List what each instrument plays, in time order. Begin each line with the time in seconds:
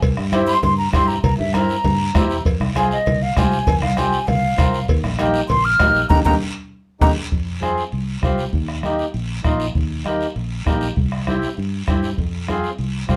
0.02 fingered electric bass C2, bombo low, cowbell, long guiro
0.17 fingered electric bass G2, bombo rim
0.32 accordion C4 E4 G4, bombo rim, cowbell, high conga, short guiro
0.47 flute C6, short guiro
0.63 fingered electric bass G2, flute C6, cowbell, low conga, long guiro
0.78 flute A#5
0.93 fingered electric bass G2, accordion C4 E4 G4, flute C6, bombo low, bombo rim, cowbell, high conga, short guiro
1.08 flute A#5, short guiro
1.23 fingered electric bass C2, flute A#5, bombo low, cowbell, low conga, long guiro
1.38 fingered electric bass G2, flute E5, high conga
1.53 accordion C4 E4 A#4, flute A#5, bombo rim, cowbell, high conga, short guiro
1.69 short guiro
1.84 fingered electric bass G2, cowbell, low conga, long guiro
2.15 fingered electric bass E2, accordion C4 E4 G4, bombo low, bombo rim, cowbell, high conga, low timbale, short guiro
2.30 short guiro
2.45 fingered electric bass F2, bombo low, cowbell, long guiro
2.60 fingered electric bass C2, bombo rim, high conga
2.76 accordion C4 F4 G#4, flute G#5, bombo rim, cowbell, high conga, short guiro
2.91 flute D#5, short guiro
3.06 fingered electric bass C2, cowbell, low conga, long guiro
3.22 flute F5
3.36 fingered electric bass C2, accordion C4 F4 G4, flute G#5, bombo low, bombo rim, cowbell, high conga, low timbale, short guiro
3.52 short guiro
3.67 fingered electric bass F2, bombo low, cowbell, low conga, long guiro
3.82 fingered electric bass C2, flute F5, bombo rim, high conga
3.97 accordion C4 F4 G4, flute G#5, bombo rim, cowbell, high conga, short guiro
4.13 short guiro
4.27 fingered electric bass C2, flute F5, cowbell, low conga, long guiro
4.57 fingered electric bass C2, accordion C4 F4 A#4, bombo low, bombo rim, cowbell, high conga, short guiro
4.73 short guiro
4.88 fingered electric bass D#2, bombo low, cowbell, long guiro
5.04 fingered electric bass A#1, bombo rim, high conga
5.18 accordion A#3 D#4 G4, bombo rim, cowbell, high conga, short guiro
5.34 short guiro
5.49 fingered electric bass A#1, flute C6, cowbell, low conga, long guiro
5.65 flute F6
5.79 fingered electric bass A#1, accordion A#3 D#4 G4, bombo low, bombo rim, cowbell, high conga, low timbale, short guiro
5.95 short guiro
6.09 fingered electric bass D#2, accordion A#3 D#4 G4, flute A#5, bombo low, high conga, high timbale, long guiro
6.25 fingered electric bass D#2, accordion A#3 D#4 G4, flute A#5, bombo low, high conga, high timbale, long guiro
7.01 fingered electric bass D#2, accordion A#3 D#4 G4, flute A#5, bombo low, high conga, high timbale, long guiro
7.32 fingered electric bass F2, bombo low, high conga, long guiro
7.61 accordion C4 F4 G#4, bombo rim, high conga, short guiro
7.77 short guiro
7.92 fingered electric bass C2, high conga, long guiro
8.22 fingered electric bass C2, accordion C4 F4 G4, bombo low, bombo rim, high conga, short guiro
8.38 short guiro
8.53 fingered electric bass D#2, bombo low, high conga, long guiro
8.68 bombo rim
8.83 accordion A#3 D#4 G4, bombo rim, high conga, short guiro
8.99 short guiro
9.14 fingered electric bass A#1, high conga, long guiro
9.44 fingered electric bass A#1, accordion A#3 D#4 F4, bombo low, bombo rim, high conga, short guiro
9.60 short guiro
9.75 fingered electric bass D#2, bombo low, high conga, long guiro
10.05 accordion A#3 D#4 G4, bombo rim, high conga, short guiro
10.21 short guiro
10.36 fingered electric bass A#1, high conga, long guiro
10.66 fingered electric bass A#1, accordion A#3 D#4 G4, bombo low, bombo rim, high conga, short guiro
10.81 short guiro
10.96 fingered electric bass C2, bombo low, high conga, long guiro
11.12 bombo rim
11.27 accordion C4 E4 G4, bombo rim, high conga, short guiro
11.42 short guiro
11.57 fingered electric bass G2, high conga, long guiro
11.88 fingered electric bass G2, accordion C4 E4 G4, bombo low, bombo rim, high conga, short guiro
12.03 short guiro
12.18 fingered electric bass F2, bombo low, high conga, long guiro
12.48 accordion C4 F4 G#4, bombo rim, high conga, short guiro
12.63 short guiro
12.78 fingered electric bass C2, high conga, long guiro
13.09 fingered electric bass C2, accordion C4 F4 G4, bombo low, bombo rim, high conga, short guiro